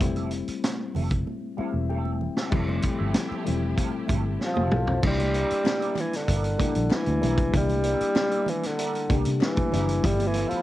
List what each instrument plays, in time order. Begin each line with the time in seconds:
Already playing: reed electric piano G#3 C4 E5
0.00 fingered electric bass F1, reed electric piano G3 A3 C4 E4, muted clean electric guitar stroke, kick, closed hi-hat, muted conga, low conga
0.16 clean electric guitar G4 A4 E5, closed hi-hat, high conga
0.31 closed hi-hat
0.48 muted fingered electric bass stroke, muted clean electric guitar stroke, closed hi-hat
0.64 muted clean electric guitar stroke, snare, closed hi-hat, muted conga, high conga
0.95 fingered electric bass F1, clean electric guitar G4 A4 E5, open hi-hat, high conga, low conga
1.10 muted clean electric guitar stroke, kick, closed hi-hat
1.27 muted clean electric guitar stroke, muted conga, high conga
1.57 reed electric piano G3 A3 C4 E4 E5, clean electric guitar G4 A4 F5, muted fingered electric bass stroke, high conga
1.73 fingered electric bass E1, muted clean electric guitar stroke
1.89 clean electric guitar G4 A4 E5, reed electric piano G5, muted conga
2.05 high conga
2.21 muted clean electric guitar stroke, low conga
2.37 clean electric guitar G4 A4 E5, snare
2.51 fingered electric bass F1, string section F3 A3 E4 G4, reed electric piano G3 A3 C4 E4, clean electric guitar G4 A4 E5, kick, crash, low conga
2.68 muted clean electric guitar stroke, high conga
2.82 muted clean electric guitar stroke, kick, closed hi-hat
2.99 fingered electric bass G1, clean electric guitar G4 A4 E5
3.14 muted clean electric guitar stroke, snare, closed hi-hat, high conga
3.29 clean electric guitar G4 A4 E5, muted fingered electric bass stroke, muted conga
3.44 fingered electric bass E1, reed electric piano G3 A3 C4 E4, muted clean electric guitar stroke, closed hi-hat, high conga, low conga
3.60 muted clean electric guitar stroke
3.76 clean electric guitar G4 A4 F5, kick, closed hi-hat
3.91 muted clean electric guitar stroke, muted conga
4.07 fingered electric bass G1, clean electric guitar G4 A4 E5, kick, closed hi-hat, high conga
4.23 muted clean electric guitar stroke
4.39 muted clean electric guitar stroke, snare
4.45 tenor saxophone F3
4.54 fingered electric bass F1, clean electric guitar G4 A4 E5, reed electric piano G4 C5, high tom, muted conga, high conga
4.70 fingered electric bass B1, reed electric piano E4 A4, muted clean electric guitar stroke, mid tom
4.86 reed electric piano C4 F4, muted clean electric guitar stroke, floor tom
5.02 fingered electric bass C2, reed electric piano G3 A#3 D4 E4, kick, crash, low conga
5.07 tenor saxophone G3
5.18 closed hi-hat, muted conga, high conga
5.34 clean electric guitar A#4 D5 E5, closed hi-hat
5.50 muted fingered electric bass stroke, closed hi-hat
5.65 muted clean electric guitar stroke, snare, clap, muted conga, high conga
5.80 clean electric guitar A#4 D5 E5, closed hi-hat, muted conga
5.95 muted clean electric guitar stroke, clap, closed hi-hat, high conga, low conga
6.00 tenor saxophone E3
6.12 muted clean electric guitar stroke, snare, closed hi-hat
6.16 tenor saxophone D3
6.27 fingered electric bass G1, clean electric guitar A#4 D5 E5, kick, closed hi-hat, muted conga
6.43 muted clean electric guitar stroke, closed hi-hat
6.58 reed electric piano G3 A#3 D4 E4, clean electric guitar A#4 D5 G5, kick, closed hi-hat, high conga
6.75 fingered electric bass A#1, muted clean electric guitar stroke, closed hi-hat
6.90 muted clean electric guitar stroke, snare, clap, muted conga
6.96 tenor saxophone E3
7.06 fingered electric bass D2, closed hi-hat, high conga
7.21 fingered electric bass B1, reed electric piano G3 A#3 D4, clean electric guitar A#4 D5 E5, closed hi-hat, low conga
7.25 reed electric piano E4
7.36 muted clean electric guitar stroke, kick, closed hi-hat
7.51 fingered electric bass C2, reed electric piano G3 A#3 D4 E4, kick, closed hi-hat, muted conga, low conga
7.57 tenor saxophone G3
7.69 closed hi-hat, muted conga, high conga
7.84 clean electric guitar A#4 D5 E5, closed hi-hat
8.01 muted fingered electric bass stroke, closed hi-hat
8.15 muted clean electric guitar stroke, snare, clap, muted conga, high conga
8.31 clean electric guitar A#4 D5 E5, closed hi-hat, muted conga
8.46 tenor saxophone E3, muted clean electric guitar stroke, closed hi-hat, high conga, low conga
8.63 tenor saxophone D3, muted clean electric guitar stroke, snare, closed hi-hat
8.78 clean electric guitar A#4 D5 E5, closed hi-hat
8.93 muted clean electric guitar stroke, closed hi-hat, muted conga
9.09 fingered electric bass C2, reed electric piano G3 A#3 D4 G4, clean electric guitar A#4 D5 G5, kick, closed hi-hat, high conga
9.25 fingered electric bass C3, muted clean electric guitar stroke, closed hi-hat
9.40 tenor saxophone E3, muted clean electric guitar stroke, snare, clap
9.56 kick, closed hi-hat, muted conga, high conga
9.71 fingered electric bass F#1, reed electric piano G3 A#3 D4 E4, clean electric guitar A#4 D5 E5, snare, closed hi-hat, low conga
9.88 muted clean electric guitar stroke, closed hi-hat
10.02 fingered electric bass G1, reed electric piano F3 A3 B3 E4, string section F3 B3 E4 A4, kick, closed hi-hat, low conga
10.06 tenor saxophone G3
10.20 closed hi-hat, muted conga, high conga
10.27 tenor saxophone E3
10.34 clean electric guitar F4 B4 E5, closed hi-hat
10.48 tenor saxophone F3, muted fingered electric bass stroke, closed hi-hat